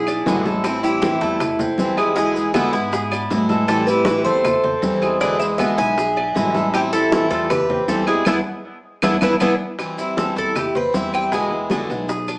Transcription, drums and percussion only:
0.07 high bongo, high conga, claves, maracas
0.26 high bongo, low bongo, high conga, maracas
0.45 high bongo, high conga, maracas
0.64 high bongo, high conga, claves, maracas
0.84 high conga, maracas
1.02 high bongo, high conga, maracas
1.21 high bongo, high conga, maracas
1.40 high bongo, high conga, low conga, claves, maracas
1.59 high bongo, high conga, low conga, maracas
1.78 high bongo, low bongo, high conga, maracas
1.97 high bongo, high conga, claves, maracas
2.17 high bongo, high conga, maracas
2.36 high conga, maracas
2.54 high bongo, high conga, claves, maracas
2.73 high bongo, high conga, maracas
2.92 high bongo, high conga, maracas
3.11 high bongo, high conga, claves, maracas
3.30 high bongo, low bongo, high conga, maracas
3.49 high bongo, high conga, maracas
3.68 high bongo, high conga, claves, maracas
3.87 high conga, maracas
4.05 high bongo, high conga, maracas
4.25 high bongo, high conga, maracas
4.44 high bongo, high conga, low conga, claves, maracas
4.64 high bongo, high conga, low conga
4.83 high bongo, low bongo, high conga, maracas
5.01 high bongo, high conga, claves, maracas
5.20 high bongo, high conga, maracas
5.40 high conga, maracas
5.59 high bongo, high conga, claves, maracas
5.78 high bongo, high conga, maracas
5.97 high bongo, high conga, maracas
6.17 high bongo, high conga, claves
6.36 high bongo, low bongo, high conga, maracas
6.54 high bongo, high conga, maracas
6.74 high bongo, high conga, claves, maracas
6.93 high conga, maracas
7.12 high bongo, high conga, maracas
7.31 high bongo, high conga, maracas
7.50 high bongo, high conga, low conga, claves, maracas
7.69 high bongo, high conga, low conga
7.88 high bongo, low bongo, high conga, maracas
8.07 high bongo, claves, maracas
8.25 low bongo, high conga, claves, maracas
9.02 low bongo, high conga, claves, maracas
9.21 low bongo, high conga, claves, maracas
9.40 low bongo, high conga, claves, maracas
9.79 high bongo, high conga, claves, maracas
9.98 high conga, maracas
10.17 high bongo, high conga, maracas
10.36 high bongo, high conga, maracas
10.56 high bongo, high conga, low conga, claves, maracas
10.75 high bongo, high conga, low conga
10.94 high bongo, low bongo, high conga, maracas
11.13 high bongo, high conga, claves, maracas
11.31 high bongo, high conga, maracas
11.51 high conga
11.70 high bongo, high conga, claves, maracas
11.89 high bongo, high conga, maracas
12.08 high bongo, high conga, maracas
12.27 high bongo, high conga, claves, maracas

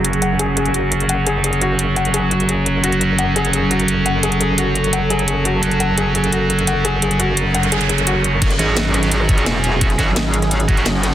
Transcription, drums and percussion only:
0.05 closed hi-hat
0.13 closed hi-hat
0.22 closed hi-hat
0.39 closed hi-hat
0.57 closed hi-hat
0.66 closed hi-hat
0.74 closed hi-hat
0.92 closed hi-hat
1.00 closed hi-hat
1.09 closed hi-hat
1.27 closed hi-hat
1.44 closed hi-hat
1.53 closed hi-hat
1.61 closed hi-hat
1.79 closed hi-hat
1.96 closed hi-hat
2.05 closed hi-hat
2.14 closed hi-hat
2.31 closed hi-hat
2.40 closed hi-hat
2.49 closed hi-hat
2.66 closed hi-hat
2.84 closed hi-hat
2.92 closed hi-hat
3.01 closed hi-hat
3.18 closed hi-hat
3.36 closed hi-hat
3.45 closed hi-hat
3.53 closed hi-hat
3.71 closed hi-hat
3.80 closed hi-hat
3.88 closed hi-hat
4.06 closed hi-hat
4.23 closed hi-hat
4.32 closed hi-hat
4.41 closed hi-hat
4.58 closed hi-hat
4.75 closed hi-hat
4.84 closed hi-hat
4.93 closed hi-hat
5.10 closed hi-hat
5.19 closed hi-hat
5.28 closed hi-hat
5.45 closed hi-hat
5.63 closed hi-hat
5.71 closed hi-hat
5.80 closed hi-hat
5.98 closed hi-hat
6.15 closed hi-hat
6.24 closed hi-hat
6.32 closed hi-hat
6.50 closed hi-hat
6.59 closed hi-hat
6.67 closed hi-hat
6.85 closed hi-hat
7.02 closed hi-hat
7.11 closed hi-hat
7.20 closed hi-hat
7.37 closed hi-hat
7.54 closed hi-hat
7.63 closed hi-hat
7.72 closed hi-hat
7.81 closed hi-hat
7.89 closed hi-hat
7.98 closed hi-hat
8.07 closed hi-hat
8.24 closed hi-hat
8.42 kick, closed hi-hat, crash, ride
8.50 snare, closed hi-hat
8.59 closed hi-hat, ride
8.76 snare, closed hi-hat, ride
8.85 snare
8.94 cross-stick, closed hi-hat, ride
9.03 snare, closed hi-hat
9.11 closed hi-hat, ride
9.20 cross-stick
9.29 kick, closed hi-hat, ride
9.38 closed hi-hat
9.46 snare, closed hi-hat, ride
9.55 snare
9.64 closed hi-hat, ride
9.81 kick, closed hi-hat, ride
9.90 snare, closed hi-hat
9.99 kick, snare, closed hi-hat, ride
10.16 snare, closed hi-hat
10.25 snare
10.33 closed hi-hat, ride
10.42 cross-stick, snare, closed hi-hat
10.51 closed hi-hat, ride
10.60 closed hi-hat
10.68 kick, closed hi-hat, ride
10.77 snare, closed hi-hat
10.85 snare, closed hi-hat, ride
10.94 snare
11.03 cross-stick, snare, closed hi-hat, ride

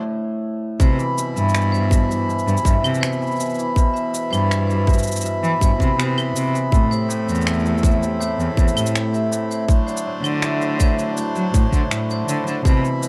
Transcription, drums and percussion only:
0.80 kick, cabasa
0.99 cabasa
1.18 cabasa
1.37 cabasa
1.49 cabasa
1.55 finger snap, cabasa
1.61 cabasa
1.74 cabasa
1.91 kick, cabasa
2.11 cabasa
2.30 cabasa
2.39 cabasa
2.48 cabasa
2.57 cabasa
2.65 kick, cabasa
2.84 cabasa, claves
2.94 cabasa
3.03 finger snap, cabasa
3.13 cabasa
3.22 cabasa
3.27 cabasa
3.31 cabasa
3.36 cabasa
3.40 cabasa
3.50 cabasa
3.54 cabasa
3.59 cabasa
3.76 kick, cabasa
3.96 cabasa
4.14 cabasa
4.33 cabasa, claves
4.51 finger snap, cabasa
4.70 cabasa
4.87 kick, cabasa
4.93 cabasa
4.98 cabasa
5.03 cabasa
5.07 cabasa
5.12 cabasa
5.16 cabasa
5.21 cabasa
5.26 cabasa
5.44 cabasa
5.61 kick, cabasa
5.80 kick, cabasa
6.00 finger snap, cabasa
6.18 cabasa, claves
6.36 cabasa
6.55 cabasa
6.72 kick, cabasa
6.92 cabasa
7.10 cabasa
7.29 cabasa
7.35 cabasa
7.41 cabasa
7.47 finger snap, cabasa
7.53 cabasa
7.59 cabasa
7.66 cabasa
7.78 cabasa
7.83 kick, cabasa
8.03 cabasa
8.22 cabasa
8.40 cabasa
8.57 kick, cabasa
8.68 cabasa
8.77 cabasa, claves
8.86 cabasa
8.95 finger snap, cabasa
9.14 cabasa
9.33 cabasa
9.51 cabasa
9.68 kick, cabasa
9.88 cabasa
9.97 cabasa
10.24 cabasa, claves
10.42 finger snap, cabasa
10.61 cabasa
10.80 kick, cabasa
10.99 cabasa
11.17 cabasa
11.35 cabasa
11.54 kick, cabasa
11.73 kick, cabasa
11.91 finger snap, cabasa
12.10 cabasa
12.29 cabasa
12.47 cabasa
12.65 kick, cabasa
12.85 cabasa
13.03 cabasa

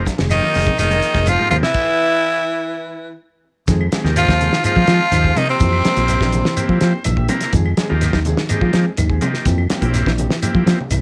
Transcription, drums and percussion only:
0.06 kick, snare, closed hi-hat, high conga, shekere
0.18 snare, closed hi-hat, low conga
0.30 closed hi-hat, high conga, claves, shekere
0.43 high conga
0.54 open hi-hat, low conga, shekere
0.67 kick, closed hi-hat, high conga
0.78 snare, closed hi-hat, claves, shekere
0.91 closed hi-hat, high conga
1.02 closed hi-hat, shekere
1.14 kick, snare, closed hi-hat
1.26 closed hi-hat, high conga, claves, shekere
1.51 closed hi-hat, high conga, low conga, claves, shekere
1.63 snare
1.74 kick, crash
3.68 kick, snare, closed hi-hat, high conga, shekere
3.81 claves
3.92 snare, closed hi-hat, high conga, shekere
4.05 snare, low conga
4.16 closed hi-hat, high conga, claves, shekere
4.28 kick, snare, high conga
4.41 closed hi-hat, low conga, shekere
4.53 snare
4.64 closed hi-hat, high conga, claves, shekere
4.76 kick, high conga
4.87 snare, closed hi-hat, shekere
5.12 snare, closed hi-hat, high conga, claves, shekere
5.25 kick
5.36 closed hi-hat, high conga, low conga, claves, shekere
5.60 kick, closed hi-hat, high conga, shekere
5.73 claves
5.84 snare, closed hi-hat, high conga, shekere
5.97 closed hi-hat
6.08 closed hi-hat, high conga, claves, shekere
6.21 kick, snare, high conga
6.33 closed hi-hat, low conga, shekere
6.45 snare
6.56 closed hi-hat, high conga, claves, shekere
6.69 kick
6.81 snare, closed hi-hat, shekere
7.04 closed hi-hat, high conga, claves, shekere
7.17 kick
7.29 closed hi-hat, high conga, low conga, claves, shekere
7.41 snare, closed hi-hat
7.53 kick, closed hi-hat, shekere
7.66 claves
7.77 snare, closed hi-hat, high conga, shekere
8.01 snare, closed hi-hat, high conga, claves, shekere
8.13 kick, snare, high conga
8.25 closed hi-hat, low conga, shekere
8.37 snare, high conga
8.49 closed hi-hat, high conga, claves, shekere
8.61 kick, high conga
8.73 snare, closed hi-hat, shekere
8.97 closed hi-hat, high conga, claves, shekere
9.10 kick
9.21 closed hi-hat, high conga, low conga, claves, shekere
9.34 snare
9.45 kick, snare, closed hi-hat, shekere
9.58 claves
9.70 snare, closed hi-hat, high conga, shekere
9.82 kick, closed hi-hat
9.94 snare, closed hi-hat, high conga, claves, shekere
10.06 kick, snare, high conga
10.18 closed hi-hat, low conga, shekere
10.30 snare
10.42 closed hi-hat, high conga, claves, shekere
10.55 kick, high conga
10.67 snare, closed hi-hat, high conga, shekere
10.81 low conga
10.91 closed hi-hat, low conga, claves, shekere

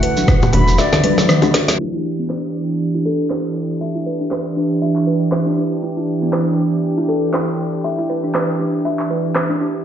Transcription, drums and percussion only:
0.03 open hi-hat
0.17 muted conga, high conga, shekere
0.28 kick, cross-stick, low bongo, shekere
0.42 mid tom, high bongo, muted conga, shekere
0.53 open hi-hat, high bongo, low bongo, high conga, low conga
0.68 muted conga, shekere
0.78 snare, shekere
0.92 snare, high bongo, muted conga, low conga, shekere
1.04 open hi-hat, high tom, high conga
1.18 snare, high conga, shekere
1.29 cross-stick, mid tom, muted conga, shekere
1.42 high bongo, low bongo, high conga, shekere
1.54 snare, open hi-hat, muted conga
1.68 snare, open hi-hat, high conga, shekere
2.30 cross-stick, clap
3.31 cross-stick, clap
4.31 cross-stick, clap
4.96 clap
5.32 cross-stick, clap
6.33 cross-stick, clap
7.34 cross-stick, clap
8.35 cross-stick, clap
8.99 clap
9.36 cross-stick, clap

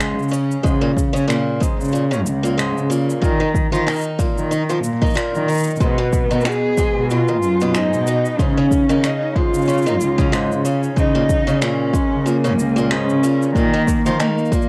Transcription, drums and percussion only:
0.01 finger snap, cabasa
0.19 cabasa
0.22 cabasa
0.29 cabasa
0.34 cabasa
0.52 cabasa
0.64 kick, cabasa
0.97 kick, cabasa
1.16 cabasa
1.30 finger snap, cabasa
1.61 kick, cabasa
1.80 cabasa
1.84 cabasa
1.91 cabasa
1.95 cabasa
2.13 cabasa
2.26 cabasa
2.45 cabasa
2.59 finger snap, cabasa
2.78 cabasa
2.92 cabasa
3.10 cabasa
3.22 kick, cabasa
3.55 kick, cabasa
3.75 cabasa
3.88 finger snap, cabasa
3.91 cabasa
3.93 cabasa
3.96 cabasa
3.98 cabasa
4.01 cabasa
4.04 cabasa
4.19 kick, cabasa
4.38 cabasa
4.52 cabasa
4.70 cabasa
4.84 cabasa
5.02 kick, cabasa
5.06 cabasa
5.10 cabasa
5.14 finger snap, cabasa
5.17 cabasa
5.35 cabasa
5.49 cabasa
5.52 cabasa
5.54 cabasa
5.58 cabasa
5.60 cabasa
5.64 cabasa
5.67 cabasa
5.70 cabasa
5.76 cabasa
5.81 kick, cabasa
6.13 kick, cabasa
6.31 cabasa
6.41 cabasa
6.45 finger snap, cabasa
6.51 cabasa
6.78 kick, cabasa
7.10 cabasa
7.28 cabasa
7.42 cabasa
7.60 cabasa
7.74 finger snap, cabasa
7.93 cabasa
8.07 cabasa
8.25 cabasa
8.39 kick, cabasa
8.71 kick, cabasa
8.90 cabasa
9.04 finger snap, cabasa
9.36 kick
9.54 cabasa
9.58 cabasa
9.62 cabasa
9.65 cabasa
9.69 cabasa
9.73 cabasa
9.78 cabasa
9.82 cabasa
9.87 cabasa
10.01 cabasa
10.18 kick, cabasa
10.33 finger snap, cabasa
10.52 cabasa
10.65 cabasa
10.83 cabasa
10.97 kick, cabasa
11.29 kick, cabasa
11.48 cabasa
11.62 finger snap, cabasa
11.94 kick, cabasa
12.27 cabasa
12.45 cabasa
12.59 cabasa
12.78 cabasa
12.91 finger snap
13.10 cabasa
13.24 cabasa
13.42 cabasa
13.55 kick, cabasa
13.87 kick, cabasa
14.06 cabasa
14.20 finger snap, cabasa
14.38 cabasa
14.45 cabasa
14.52 kick, cabasa
14.62 cabasa

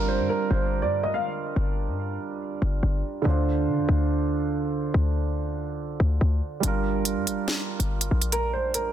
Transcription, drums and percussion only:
6.63 closed hi-hat
7.05 closed hi-hat
7.27 closed hi-hat
7.48 snare
7.80 closed hi-hat
8.01 closed hi-hat
8.22 closed hi-hat
8.32 closed hi-hat
8.74 closed hi-hat

